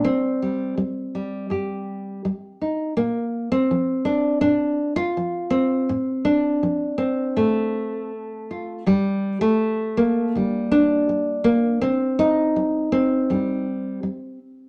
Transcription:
0, 0, Header, 1, 2, 480
1, 0, Start_track
1, 0, Tempo, 729927
1, 26, Time_signature, 4, 2, 24, 8
1, 3866, Tempo, 744417
1, 7226, Tempo, 730816
1, 9590, End_track
2, 0, Start_track
2, 0, Title_t, "Nylon-string guitar"
2, 0, Program_c, 0, 24
2, 0, Note_on_c, 0, 55, 47
2, 27, Note_on_c, 0, 48, 68
2, 30, Note_on_c, 0, 60, 91
2, 276, Note_off_c, 0, 55, 0
2, 279, Note_on_c, 0, 55, 45
2, 460, Note_off_c, 0, 48, 0
2, 507, Note_off_c, 0, 55, 0
2, 510, Note_on_c, 0, 55, 65
2, 747, Note_off_c, 0, 55, 0
2, 755, Note_on_c, 0, 55, 48
2, 987, Note_on_c, 0, 43, 63
2, 994, Note_on_c, 0, 67, 49
2, 1419, Note_off_c, 0, 43, 0
2, 1468, Note_off_c, 0, 60, 0
2, 1471, Note_off_c, 0, 55, 0
2, 1479, Note_on_c, 0, 55, 66
2, 1720, Note_on_c, 0, 63, 44
2, 1905, Note_off_c, 0, 55, 0
2, 1925, Note_off_c, 0, 63, 0
2, 1951, Note_on_c, 0, 58, 91
2, 1954, Note_on_c, 0, 46, 69
2, 2309, Note_off_c, 0, 58, 0
2, 2313, Note_on_c, 0, 60, 94
2, 2382, Note_off_c, 0, 46, 0
2, 2439, Note_on_c, 0, 53, 65
2, 2664, Note_on_c, 0, 62, 92
2, 2863, Note_off_c, 0, 53, 0
2, 2892, Note_off_c, 0, 62, 0
2, 2900, Note_on_c, 0, 62, 98
2, 2913, Note_on_c, 0, 46, 63
2, 3147, Note_off_c, 0, 60, 0
2, 3260, Note_off_c, 0, 62, 0
2, 3262, Note_on_c, 0, 65, 101
2, 3342, Note_off_c, 0, 46, 0
2, 3400, Note_on_c, 0, 53, 66
2, 3620, Note_on_c, 0, 60, 95
2, 3827, Note_off_c, 0, 53, 0
2, 3866, Note_off_c, 0, 65, 0
2, 3871, Note_off_c, 0, 67, 0
2, 3875, Note_on_c, 0, 45, 69
2, 4104, Note_on_c, 0, 62, 96
2, 4298, Note_off_c, 0, 45, 0
2, 4349, Note_on_c, 0, 53, 59
2, 4568, Note_off_c, 0, 60, 0
2, 4575, Note_on_c, 0, 60, 82
2, 4777, Note_off_c, 0, 53, 0
2, 4825, Note_on_c, 0, 57, 70
2, 4830, Note_on_c, 0, 45, 60
2, 5063, Note_off_c, 0, 62, 0
2, 5261, Note_off_c, 0, 45, 0
2, 5302, Note_off_c, 0, 60, 0
2, 5560, Note_on_c, 0, 65, 41
2, 5767, Note_off_c, 0, 65, 0
2, 5791, Note_off_c, 0, 57, 0
2, 5791, Note_on_c, 0, 43, 68
2, 5795, Note_on_c, 0, 55, 79
2, 6141, Note_off_c, 0, 55, 0
2, 6143, Note_on_c, 0, 57, 84
2, 6224, Note_off_c, 0, 43, 0
2, 6506, Note_on_c, 0, 58, 92
2, 6747, Note_off_c, 0, 57, 0
2, 6751, Note_on_c, 0, 50, 62
2, 6759, Note_on_c, 0, 55, 47
2, 6984, Note_on_c, 0, 62, 98
2, 7181, Note_off_c, 0, 50, 0
2, 7224, Note_off_c, 0, 55, 0
2, 7227, Note_on_c, 0, 55, 66
2, 7450, Note_off_c, 0, 58, 0
2, 7457, Note_on_c, 0, 58, 90
2, 7662, Note_off_c, 0, 55, 0
2, 7700, Note_off_c, 0, 58, 0
2, 7702, Note_on_c, 0, 60, 101
2, 7708, Note_off_c, 0, 62, 0
2, 7714, Note_on_c, 0, 48, 68
2, 7948, Note_on_c, 0, 63, 105
2, 8146, Note_off_c, 0, 48, 0
2, 8194, Note_on_c, 0, 55, 67
2, 8421, Note_off_c, 0, 60, 0
2, 8429, Note_on_c, 0, 60, 95
2, 8626, Note_off_c, 0, 55, 0
2, 8677, Note_on_c, 0, 43, 67
2, 8681, Note_on_c, 0, 55, 48
2, 8910, Note_off_c, 0, 63, 0
2, 9106, Note_off_c, 0, 43, 0
2, 9150, Note_off_c, 0, 55, 0
2, 9158, Note_on_c, 0, 55, 65
2, 9388, Note_off_c, 0, 60, 0
2, 9584, Note_off_c, 0, 55, 0
2, 9590, End_track
0, 0, End_of_file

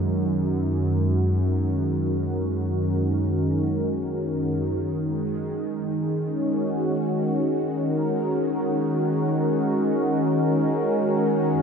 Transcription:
0, 0, Header, 1, 2, 480
1, 0, Start_track
1, 0, Key_signature, -6, "major"
1, 0, Tempo, 500000
1, 11156, End_track
2, 0, Start_track
2, 0, Title_t, "Analog synth pad"
2, 0, Program_c, 0, 89
2, 0, Note_on_c, 0, 42, 87
2, 0, Note_on_c, 0, 51, 80
2, 0, Note_on_c, 0, 56, 67
2, 0, Note_on_c, 0, 61, 77
2, 0, Note_on_c, 0, 66, 76
2, 0, Note_on_c, 0, 70, 59
2, 4558, Note_off_c, 0, 42, 0
2, 4560, Note_off_c, 0, 61, 0
2, 4560, Note_off_c, 0, 66, 0
2, 4563, Note_off_c, 0, 70, 0
2, 4565, Note_off_c, 0, 56, 0
2, 4842, Note_on_c, 0, 56, 73
2, 5998, Note_on_c, 0, 61, 82
2, 6267, Note_on_c, 0, 66, 81
2, 7494, Note_on_c, 0, 70, 85
2, 11047, Note_on_c, 0, 42, 67
2, 11156, Note_off_c, 0, 42, 0
2, 11156, Note_off_c, 0, 51, 0
2, 11156, Note_off_c, 0, 56, 0
2, 11156, Note_off_c, 0, 61, 0
2, 11156, Note_off_c, 0, 66, 0
2, 11156, Note_off_c, 0, 70, 0
2, 11156, End_track
0, 0, End_of_file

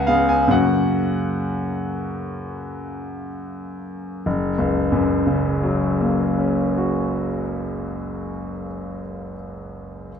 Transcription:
0, 0, Header, 1, 2, 480
1, 0, Start_track
1, 0, Key_signature, 6, "major"
1, 0, Tempo, 891530
1, 274, Time_signature, 4, 2, 24, 8
1, 758, Tempo, 946372
1, 2198, Tempo, 907716
1, 5345, End_track
2, 0, Start_track
2, 0, Title_t, "Grand piano"
2, 0, Program_c, 0, 0
2, 0, Control_c, 0, 64, 127
2, 0, Note_on_c, 0, 37, 64
2, 0, Note_on_c, 0, 78, 64
2, 37, Note_on_c, 0, 77, 73
2, 43, Note_on_c, 0, 49, 41
2, 44, Note_on_c, 0, 59, 37
2, 47, Note_on_c, 0, 68, 43
2, 154, Note_off_c, 0, 77, 0
2, 155, Note_on_c, 0, 80, 65
2, 253, Note_off_c, 0, 49, 0
2, 256, Note_off_c, 0, 59, 0
2, 256, Note_on_c, 0, 42, 54
2, 258, Note_off_c, 0, 68, 0
2, 261, Note_on_c, 0, 49, 36
2, 270, Note_on_c, 0, 58, 38
2, 274, Note_off_c, 0, 80, 0
2, 274, Note_on_c, 0, 66, 38
2, 275, Note_off_c, 0, 78, 0
2, 275, Note_on_c, 0, 78, 74
2, 286, Control_c, 0, 64, 0
2, 290, Note_off_c, 0, 37, 0
2, 380, Control_c, 0, 64, 127
2, 1708, Note_off_c, 0, 78, 0
2, 2169, Note_off_c, 0, 42, 0
2, 2171, Note_off_c, 0, 49, 0
2, 2176, Note_off_c, 0, 58, 0
2, 2178, Note_off_c, 0, 66, 0
2, 2206, Note_on_c, 0, 30, 55
2, 2210, Control_c, 0, 64, 0
2, 2336, Control_c, 0, 64, 127
2, 2376, Note_on_c, 0, 37, 44
2, 2553, Note_on_c, 0, 42, 50
2, 2737, Note_on_c, 0, 49, 43
2, 2931, Note_on_c, 0, 54, 43
2, 3126, Note_on_c, 0, 58, 39
2, 3327, Note_on_c, 0, 61, 40
2, 3534, Note_on_c, 0, 66, 34
2, 3800, Note_off_c, 0, 30, 0
2, 3969, Note_off_c, 0, 37, 0
2, 4146, Note_off_c, 0, 42, 0
2, 4331, Note_off_c, 0, 49, 0
2, 4525, Note_off_c, 0, 54, 0
2, 4720, Note_off_c, 0, 58, 0
2, 4883, Note_off_c, 0, 66, 0
2, 4885, Note_off_c, 0, 61, 0
2, 5298, Control_c, 0, 64, 0
2, 5345, End_track
0, 0, End_of_file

